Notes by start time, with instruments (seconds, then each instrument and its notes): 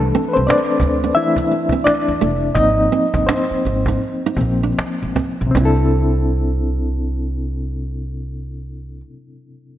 Already playing: reed electric piano E3 A3 D4 A4
0.02 cajon slap
0.15 nylon-string guitar C4, cajon slap
0.28 reed electric piano B4
0.33 upright bass C2, reed electric piano C4 C5, cajon slap
0.47 nylon-string guitar D4, reed electric piano D4 D5, cajon slap
0.69 cajon slap
0.80 upright bass D2, muted nylon-string guitar stroke, cajon bass
1.03 nylon-string guitar D4, cajon slap
1.15 reed electric piano E3 A3 D4 E4 E5, cajon slap
1.36 nylon-string guitar D4, cajon bass
1.51 muted nylon-string guitar stroke, cajon slap
1.69 nylon-string guitar C4, cajon bass
1.74 cajon slap
1.84 reed electric piano D4 D5, cajon slap
2.05 upright bass E2, cajon slap
2.20 upright bass F1, nylon-string guitar A3, cajon slap
2.43 cajon slap
2.55 upright bass G#1, reed electric piano F3 A#3 C4 D#4 D#5, cajon bass
2.78 cajon slap
2.92 nylon-string guitar C4, cajon slap
3.14 upright bass G1, cajon bass
3.27 reed electric piano C4 C5, nylon-string guitar D4, cajon slap
3.50 muted upright bass stroke, cajon slap
3.65 upright bass G#1, muted nylon-string guitar stroke, cajon slap
3.86 nylon-string guitar D#4, cajon bass
4.02 cajon slap
4.24 nylon-string guitar D#4, cajon slap
4.37 upright bass A#1, reed electric piano F3 A#3 C4, cajon bass
4.41 muted nylon-string guitar stroke
4.61 nylon-string guitar D4, cajon slap
4.78 muted upright bass stroke, cajon slap
4.99 upright bass G#1, cajon slap
5.16 nylon-string guitar C4, cajon bass
5.41 upright bass A#1, cajon slap
5.47 reed electric piano C3
5.51 reed electric piano C4, cajon bass
5.55 upright bass C2, nylon-string guitar C4, reed electric piano D4
5.61 reed electric piano E4
5.65 reed electric piano A4